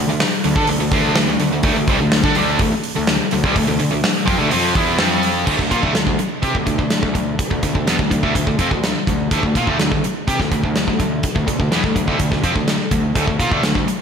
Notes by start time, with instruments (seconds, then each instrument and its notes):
0.08 picked electric bass D2, distorted electric guitar D3 A3
0.20 muted picked electric bass stroke, muted distorted electric guitar stroke, snare, open hi-hat
0.44 picked electric bass D2, distorted electric guitar D3 A3, open hi-hat
0.56 picked electric bass D3, distorted electric guitar D4 A4, kick
0.67 picked electric bass D2, distorted electric guitar D3 A3, open hi-hat
0.80 picked electric bass D2, distorted electric guitar D3 A3
0.91 picked electric bass D2, distorted electric guitar D3 A3 D4, kick, open hi-hat
1.15 picked electric bass D2, distorted electric guitar D3 A3, snare, open hi-hat
1.27 picked electric bass D2, distorted electric guitar D3 A3
1.39 picked electric bass D2, distorted electric guitar D3 A3, open hi-hat
1.51 picked electric bass D2, distorted electric guitar D3 A3
1.63 picked electric bass D2, distorted electric guitar D3 A3, kick, open hi-hat
1.75 picked electric bass D2, distorted electric guitar D3 A3
1.88 picked electric bass C2, distorted electric guitar C3 G3, kick, open hi-hat
2.00 picked electric bass D2, distorted electric guitar D3 A3
2.12 snare, open hi-hat
2.23 picked electric bass D3, distorted electric guitar D4 A4, kick
2.35 picked electric bass D2, distorted electric guitar D3 A3 D4, open hi-hat
2.59 picked electric bass D2, distorted electric guitar D3 A3, kick, open hi-hat
2.72 muted distorted electric guitar stroke, muted picked electric bass stroke
2.83 open hi-hat
2.96 picked electric bass D2, distorted electric guitar D3 A3
3.07 snare, open hi-hat
3.31 picked electric bass D2, distorted electric guitar D3 A3, open hi-hat
3.44 picked electric bass C2, distorted electric guitar C3 G3, kick
3.56 picked electric bass D2, distorted electric guitar D3 A3, kick, open hi-hat
3.67 picked electric bass D2, distorted electric guitar D3 A3
3.79 picked electric bass D2, distorted electric guitar D3 A3, open hi-hat
3.91 picked electric bass D2, distorted electric guitar D3 A3
4.03 muted distorted electric guitar stroke, muted picked electric bass stroke, snare, open hi-hat
4.26 picked electric bass F2, distorted electric guitar F3 C4, kick, open hi-hat
4.38 picked electric bass D2, distorted electric guitar D3 A3
4.51 picked electric bass F2, distorted electric guitar F3 C4 F4, open hi-hat
4.75 picked electric bass E2, distorted electric guitar E3 B3 E4, kick, open hi-hat
4.98 picked electric bass F2, distorted electric guitar F3 C4 F4, snare, open hi-hat
5.23 open hi-hat
5.46 picked electric bass D2, distorted electric guitar D3 A3, kick, crash
5.59 picked electric bass D2, distorted electric guitar D3 A3, kick, snare
5.71 picked electric bass A#2, distorted electric guitar A#3 F4, kick, closed hi-hat
5.83 picked electric bass D2, distorted electric guitar D3 A3, kick
5.94 picked electric bass D2, distorted electric guitar D3 A3, snare, closed hi-hat
6.07 picked electric bass D2, distorted electric guitar D3 A3, kick
6.19 muted distorted electric guitar stroke, muted picked electric bass stroke, closed hi-hat
6.42 picked electric bass C3, distorted electric guitar C4 G4, kick, closed hi-hat
6.55 picked electric bass D2, distorted electric guitar D3 A3, kick
6.66 picked electric bass D2, distorted electric guitar D3 A3, kick, closed hi-hat
6.78 picked electric bass D2, distorted electric guitar D3 A3, kick
6.90 snare, closed hi-hat
7.03 picked electric bass D2, distorted electric guitar D3 A3, kick
7.14 picked electric bass D2, distorted electric guitar D3 A3, kick, closed hi-hat
7.39 kick, closed hi-hat
7.50 picked electric bass D2, distorted electric guitar D3 A3, kick
7.63 picked electric bass D2, distorted electric guitar D3 A3, kick, closed hi-hat
7.74 picked electric bass D2, distorted electric guitar D3 A3, kick
7.87 picked electric bass E2, distorted electric guitar E3 B3, snare, closed hi-hat
7.99 picked electric bass D2, distorted electric guitar D3 A3, kick
8.10 picked electric bass D2, distorted electric guitar D3 A3, kick, closed hi-hat
8.23 picked electric bass D2, distorted electric guitar D3 A3, kick
8.35 picked electric bass D2, distorted electric guitar D3 A3, kick, closed hi-hat
8.47 picked electric bass D2, distorted electric guitar D3 A3, kick
8.59 picked electric bass F2, distorted electric guitar F3 C4, kick, closed hi-hat
8.71 picked electric bass D2, distorted electric guitar D3 A3, kick
8.84 snare, closed hi-hat
9.07 picked electric bass D2, distorted electric guitar D3 A3, kick, closed hi-hat
9.31 picked electric bass D2, distorted electric guitar D3 A3, kick, closed hi-hat
9.43 picked electric bass D2, distorted electric guitar D3 A3, kick
9.55 picked electric bass A#2, distorted electric guitar A#3 F4, kick, closed hi-hat
9.67 picked electric bass D2, distorted electric guitar D3 A3, kick
9.79 picked electric bass D2, distorted electric guitar D3 A3, snare, closed hi-hat
9.92 picked electric bass D2, distorted electric guitar D3 A3, kick
10.03 muted picked electric bass stroke, muted distorted electric guitar stroke, closed hi-hat
10.28 picked electric bass C3, distorted electric guitar C4 G4, kick, closed hi-hat
10.39 picked electric bass D2, distorted electric guitar D3 A3, kick, snare
10.51 picked electric bass D2, distorted electric guitar D3 A3, kick, closed hi-hat
10.63 picked electric bass D2, distorted electric guitar D3 A3, kick
10.76 snare, closed hi-hat
10.87 picked electric bass D2, distorted electric guitar D3 A3, kick
10.99 picked electric bass D2, distorted electric guitar D3 A3, kick, closed hi-hat
11.23 kick, closed hi-hat
11.35 picked electric bass D2, distorted electric guitar D3 A3, kick
11.47 picked electric bass D2, distorted electric guitar D3 A3, kick, closed hi-hat
11.60 picked electric bass D2, distorted electric guitar D3 A3, kick
11.71 picked electric bass E2, distorted electric guitar E3 B3, snare, closed hi-hat
11.84 picked electric bass D2, distorted electric guitar D3 A3, kick
11.96 picked electric bass D2, distorted electric guitar D3 A3, kick, closed hi-hat
12.08 picked electric bass D2, distorted electric guitar D3 A3, kick
12.19 picked electric bass D2, distorted electric guitar D3 A3, kick, closed hi-hat
12.32 picked electric bass D2, distorted electric guitar D3 A3, kick, snare
12.43 picked electric bass F2, distorted electric guitar F3 C4, kick, closed hi-hat
12.55 picked electric bass D2, distorted electric guitar D3 A3, kick
12.68 snare, closed hi-hat
12.91 picked electric bass D2, distorted electric guitar D3 A3, kick, closed hi-hat
13.15 picked electric bass D2, distorted electric guitar D3 A3, kick, closed hi-hat
13.27 picked electric bass D2, distorted electric guitar D3 A3, kick
13.39 picked electric bass A#2, distorted electric guitar A#3 F4, kick, closed hi-hat
13.51 picked electric bass D2, distorted electric guitar D3 A3, kick
13.62 picked electric bass D2, distorted electric guitar D3 A3, snare, closed hi-hat
13.75 picked electric bass D2, distorted electric guitar D3 A3, kick
13.87 muted picked electric bass stroke, muted distorted electric guitar stroke, closed hi-hat